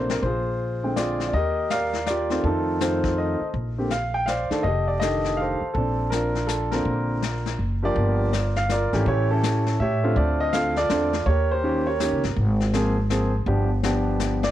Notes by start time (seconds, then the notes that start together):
Already playing: A#1 C3 A3 A#3 D4 C5
0.10 A#4, snare
0.23 A#1 F4 G#4 C5, brush sweep, kick
0.83 D3 G#3 C4 G5
0.96 F4 G#4 D5, snare, hi-hat pedal
1.20 snare
1.28 D5
1.33 D#2 G4 A#4 D#5, brush sweep, kick
1.70 A#4 D5 F5, snare, hi-hat pedal
1.93 snare
2.06 F4 G4 D5, snare, hi-hat pedal
2.30 D#3 A3 C4 F4, snare
2.43 F2 C4 A4, brush sweep, kick
2.47 D#4
2.81 D#3 A3 C4 D#4 F4 A4 C5, snare, hi-hat pedal
3.04 kick, snare
3.18 A4 C5 D#5
3.41 muted upright bass stroke
3.54 A#1, brush sweep, kick
3.78 D3 A#3 C4 G4
3.90 F5, snare, hi-hat pedal
4.14 G5
4.26 C5 D5 F5, snare, hi-hat pedal
4.50 D#3 A3 D4 A4, muted upright bass stroke, snare
4.63 F1 G4 A4 D#5, brush sweep, kick
4.88 D5
5.00 D3 D#3 A3 G4 A4 D#5, snare, hi-hat pedal
5.24 snare
5.37 F5
5.41 A4 C5
5.61 muted upright bass stroke
5.74 A#1 A4, brush sweep, kick
5.78 C4 D4
6.10 A#4, snare, hi-hat pedal
6.14 D4 F4
6.35 snare
6.47 A4, snare, hi-hat pedal
6.71 D3 A#3 C4 D4 F4 A#4, snare
6.85 A#1, brush sweep, kick
7.22 snare, hi-hat pedal
7.46 snare
7.59 F#1
7.82 F3 A#3 D4 F4 G4 A#4 D5
7.96 G1, brush sweep, kick
8.33 snare, hi-hat pedal
8.56 F5, snare
8.69 F4 A#4 D5, snare, hi-hat pedal
8.93 G#1 E3 A3 C#4 G4, snare
9.06 A1 E4 G4 C#5, brush sweep, kick
9.31 C#4 E4 A4
9.43 snare, hi-hat pedal
9.66 snare
9.80 A2 G4 C#5 E5
10.04 D3 A3 C4 F4
10.16 D2 F4 A4 D5, brush sweep, kick
10.40 D#5
10.53 D3 A3 C4 F4 F5, snare, hi-hat pedal
10.76 F4 A4 D5, snare
10.90 E2 D3 A3 C4 D4, snare, hi-hat pedal
11.13 snare
11.26 D#2 G4 A#4 C#5, brush sweep, kick
11.51 G4 C5
11.63 D#3 A#3 C#4 G4
11.87 G4 A#4 C#5
12.00 D#3 A#3 C#4 G4, snare, hi-hat pedal
12.12 C#2
12.23 G1, snare
12.36 G#1, brush sweep, kick
12.60 snare
12.73 F3 A#3 C4 G#4, snare, hi-hat pedal
13.10 F3 A#3 C4 G#4, snare, hi-hat pedal
13.46 G1 F3 B3 D4 G4, brush sweep, kick
13.83 F3 B3 D4 G4, snare, hi-hat pedal
14.20 snare, hi-hat pedal
14.43 D5, snare